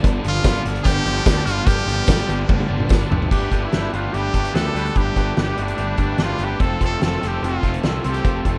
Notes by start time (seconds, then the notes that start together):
Already playing: G3 C4
0.02 G1 G2 D3 F3 B3 D4, kick, closed hi-hat
0.22 G1 F3 B3 D4, closed hi-hat
0.28 F4 F6
0.35 closed hi-hat
0.43 G1 D3 F3 B3 D4, kick, snare, closed hi-hat, tambourine
0.55 closed hi-hat
0.65 G1 G2 D3 F3 B3 D4, closed hi-hat
0.75 closed hi-hat
0.84 G1 D3 F3 B3 G4 G6, kick, closed hi-hat
0.88 D4
1.04 G1 F3 B3 D4, closed hi-hat
1.09 G2 D3
1.17 closed hi-hat
1.25 D2 D3 F3 D4, kick, snare, closed hi-hat, tambourine
1.29 B3 D4
1.44 G1 G2 F3 B3 D4 F4 F6, closed hi-hat
1.49 G2 D3
1.66 G1 G2 D3 F3 B3 D4 G4 G6, kick, closed hi-hat
1.78 closed hi-hat
1.86 G1 F3 B3 D4, closed hi-hat
1.91 F3
2.07 G1 D3 F3 B3, kick, snare, closed hi-hat, tambourine
2.12 D4
2.19 closed hi-hat
2.27 G1 G2 D3 F3 B3 D4, closed hi-hat
2.48 G1 D3 F3 B3 D4, kick, high tom
2.60 high tom
2.68 G1 G2 D3 F3 B3 D4
2.80 mid tom
2.89 G1 D3 F3 B3 D4, kick, snare, tambourine
2.93 D4
3.10 G1 F3 B3 C4 D4, floor tom
3.22 floor tom
3.30 G1 G2 D3 G3 A3 B3 D4 G4 B4, kick, crash
3.50 G1 G2 D3 G3 A3 B3 D4 G4 B4, kick, closed hi-hat
3.65 E4
3.71 G1 G2 D3 G3 A3 B3 D4 G4 B4, snare, closed hi-hat
3.92 G1 G2 D3 G3 A3 B3 D4 F4 G4 B4, closed hi-hat
4.13 G1 G2 D3 G3 A3 B3 D4 G4 B4, closed hi-hat
4.34 G1 G2 D3 G3 A3 B3 D4 G4 B4, kick, closed hi-hat
4.45 closed hi-hat
4.54 D2 G2 D3 G3 A3 B3 D4 G4 A4 B4, snare, closed hi-hat
4.75 D2 G2 D3 G3 A3 B3 D4 G4 B4, closed hi-hat
4.86 closed hi-hat
4.95 G1 G2 D3 G3 A3 B3 D4 G4 B4, kick, closed hi-hat
5.15 G1 G2 D3 G3 A3 B3 D4 G4 B4, kick, closed hi-hat
5.20 D4
5.35 G1 G2 G3 A3 D4 G4 B4, snare, closed hi-hat
5.39 D3 G3 B3 D4 G4
5.56 G1 G2 D3 G3 A3 D4 G4 B4, closed hi-hat
5.61 B3 D4
5.68 closed hi-hat
5.76 G1 G2 D3 G3 A3 B3 D4 G4 B4, closed hi-hat
5.80 D4
5.97 G1 G2 D3 G3 A3 B3 D4 G4 B4, kick, closed hi-hat
6.18 G1 G2 D3 G3 A3 B3 D4 G4 B4, snare, closed hi-hat
6.23 F4
6.38 G1 G2 D3 G3 A3 B3 D4 G4 B4, closed hi-hat
6.44 G4
6.59 F1 F2 C3 F3 A3 C4 F4 A4, kick, closed hi-hat
6.80 F1 F2 C3 F3 A3 C4 F4 A4, kick, closed hi-hat
6.85 A4
7.00 F1 F2 C3 F3 A3 C4 F4 A4, snare, closed hi-hat
7.04 A4
7.21 F1 F2 C3 F3 A3 C4 F4 A4, snare, closed hi-hat
7.25 C4 G4
7.41 F1 F2 C3 F3 C4 F4 A4, closed hi-hat
7.45 A3 C4 F4
7.62 F1 F2 C3 F3 A3 C4 F4 A4, kick, closed hi-hat
7.74 closed hi-hat
7.83 C2 F2 C3 F3 A3 C4 F4 A4, snare, closed hi-hat
7.88 C4
8.03 C2 F2 C3 F3 C4 F4 A4, closed hi-hat
8.07 A3 C4 G4
8.14 closed hi-hat
8.24 F1 F2 C3 F3 C4 F4 A4, kick, closed hi-hat
8.28 A3 C4
8.44 F1 F2 C3 F3 A3 C4 F4 A4, kick, closed hi-hat
8.49 C4